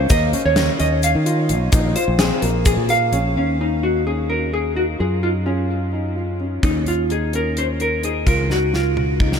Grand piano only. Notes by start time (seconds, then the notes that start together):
0.10 A#3
0.33 C#4
0.56 C#4
0.79 C#4
1.26 F4
1.72 D#4
1.95 F4
2.19 C4
2.42 A#3
2.89 A#3
3.13 C#4
3.36 C#4
3.82 D#4
4.06 C#4
4.29 C#4
4.75 D#4
4.99 F4
5.23 D#4
5.45 F4
5.93 D#4
6.16 F4
6.40 C#4
6.63 C#4
7.10 D#4
7.33 C#4
7.57 C#4
8.03 D#4
8.26 F4
8.50 D#4
8.73 F4
9.20 D#4